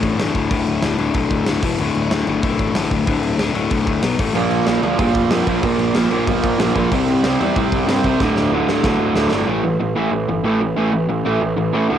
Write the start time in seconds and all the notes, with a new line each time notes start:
Already playing: D2 A2 D3
0.03 A1, kick, crash
0.18 A1 D2 A2 D3, snare, crash
0.34 D1 D2 A2 D3, kick, crash
0.50 D1 D2 A2 D3, kick, crash
0.66 D1, crash
0.82 D1 D2 A2 D3, snare, crash
0.98 D1 D2 A2 D3, crash
1.14 B1 D2 A2 D3, kick, crash
1.30 D2, kick, crash
1.46 D1 D2 A2 D3, snare, crash
1.62 E1 E2 B2 E3, kick, crash
1.78 D1 D2 A2 D3, crash
1.95 D1, crash
2.10 D1 D2 A2 D3, snare, crash
2.27 G1 D2 A2 D3, crash
2.43 B1 D2 A2 D3, kick, crash
2.59 A1, kick, crash
2.75 A1 D2 A2 D3, snare, crash
2.91 D1 D2 A2 D3, kick, crash
3.07 D1 D2 A2 D3, kick, crash
3.23 D1, crash
3.38 D1 D2 A2 D3, snare, crash
3.54 D1 D2 A2 D3, crash
3.70 B1 D2 A2 D3, kick, crash
3.87 D2, kick, crash
4.02 B1 B2 F#3 B3, snare, crash
4.19 A1 A2 E3 A3, kick, crash
4.34 A#1 A#2 F3 A#3, crash
4.50 A#1, crash
4.66 A#1 A#2 F3 A#3, snare, crash
4.82 D2 A#2 F3 A#3, crash
4.99 G2 A#2 F3 A#3, kick, crash
5.15 F1, kick, crash
5.30 F2 A#2 F3 A#3, snare, crash
5.47 A#1 A#2 F3 A#3, kick, crash
5.63 A#1 A#2 F3 A#3, kick, crash
5.78 A#1, crash
5.94 A#1 A#2 F3 A#3, snare, crash
6.11 A#1 A#2 F3 A#3, crash
6.27 G1 A#2 F3 A#3, kick, crash
6.43 A#2, kick, crash
6.59 A#1 A#2 F3 A#3, snare, crash
6.75 A#1 A#2 F3 A#3, kick, crash
6.92 C2 C3 G3 C4, kick, crash
7.07 C2, crash
7.23 C2 C3 G3 C4, snare, crash
7.40 E2 C3 G3 C4, crash
7.56 A2 C3 G3 C4, kick, crash
7.72 G1, kick, crash
7.87 G2 C3 G3 C4, snare, crash
8.04 C2 C3 G3 C4, kick, crash
8.20 D1 D2 A2 D3, kick, snare
8.36 D1, snare
8.52 D1 D2 A2 D3
8.67 D1 D2 A2 D3, snare
8.83 B1 D2 A2 D3, kick, snare
9.00 D2
9.15 D1 D2 A2 D3, snare
9.32 G1 D2 A2 D3, snare
9.47 A1 A2 E3 A3
9.64 A1 A2 E3
9.79 A1 A2 E3
9.96 A2 E3 A3
10.12 A1 A2 E3
10.28 G1 A2 E3
10.44 A1 A2 E3 A3
10.61 A2 E3
10.76 A1 A2 E3 A3
10.92 A1 A2 E3
11.08 A1 A2 E3
11.25 A1 A2 E3 A3
11.41 A1 A2 E3
11.57 A1 A2 E3
11.74 A1 A2 E3 A3
11.89 D1 D2 A2 D3